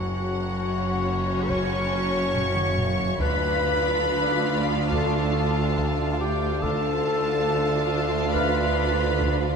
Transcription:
Already playing: F#1 F#2 C#4 F#4 C#5 F#5
1.49 C#5 C#6, taiko
2.35 taiko low-mid
2.56 taiko mid
2.78 taiko low-mid
2.99 taiko low
3.20 D2 D4 F4 B4 F5 B5, taiko
4.92 A4 A5, taiko
5.78 taiko
6.20 G4 G5
6.62 D2 D4 F4 A4 F5 A5, taiko
7.08 E6
8.34 B4 F5 B5 F6, taiko
9.21 taiko

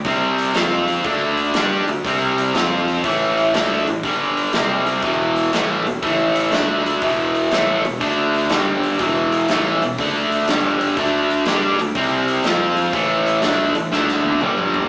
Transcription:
0.05 C2 C3 G3 C4, kick, open hi-hat
0.38 open hi-hat
0.54 F2 F3 C4 F4, snare, open hi-hat
0.88 open hi-hat
1.04 D2 D3 A3 D4, kick, open hi-hat
1.37 open hi-hat
1.54 G2 G3 D4 G4, snare, open hi-hat
1.87 D2 D3 A3, open hi-hat
2.04 C2 C3 G3 C4, kick, open hi-hat
2.38 open hi-hat
2.54 F2 F3 C4 F4, snare, open hi-hat
2.88 open hi-hat
3.04 A1 A2 E3 A3, kick, open hi-hat
3.38 open hi-hat
3.54 D2 D3 A3 D4, snare, open hi-hat
3.87 A1 A2 E3, open hi-hat
4.03 G1 G2 D3 G3, kick, open hi-hat
4.37 open hi-hat
4.53 C2 C3 G3 C4, snare, open hi-hat
4.87 open hi-hat
5.02 E1 E2 B2 E3, kick, open hi-hat
5.36 open hi-hat
5.52 A1 A2 E3 A3, snare, open hi-hat
5.86 E1 E2 B2, open hi-hat
6.03 A1 A2 E3 A3, kick, open hi-hat
6.36 open hi-hat
6.52 D2 D3 A3 D4, snare, open hi-hat
6.86 open hi-hat
7.01 E1 E2 B2 E3, kick, open hi-hat
7.35 open hi-hat
7.51 A1 A2 E3 A3, snare, open hi-hat
7.84 E1 E2 B2, open hi-hat
8.01 D2 D3 A3 D4, kick, open hi-hat
8.34 open hi-hat
8.49 G1 G2 D3 G3, snare, open hi-hat
8.83 open hi-hat
8.99 E1 E2 B2 E3, kick, open hi-hat
9.32 open hi-hat
9.49 A1 A2 E3 A3, snare, open hi-hat
9.82 E1 E2 B2, open hi-hat
9.98 D2 D3 A3 D4, kick, open hi-hat
10.32 open hi-hat
10.47 G1 G2 D3 G3, snare, open hi-hat
10.81 open hi-hat
10.96 D2 D3 A3 D4, kick, open hi-hat
11.30 open hi-hat
11.46 G2 G3 D4 G4, snare, open hi-hat
11.79 D2 D3 A3, open hi-hat
11.95 C2 C3 G3 C4, kick, open hi-hat
12.28 open hi-hat
12.44 F2 F3 C4 F4, snare, open hi-hat
12.77 open hi-hat
12.93 A1 A2 E3 A3, kick, open hi-hat
13.26 open hi-hat
13.42 D2 D3 A3 D4, snare, open hi-hat
13.74 A1 A2 E3, open hi-hat
13.92 D2 D3 A3 D4, snare
14.08 snare
14.24 high tom
14.32 high tom
14.41 G1 G2 D3 G3, mid tom
14.58 mid tom
14.74 floor tom
14.82 floor tom

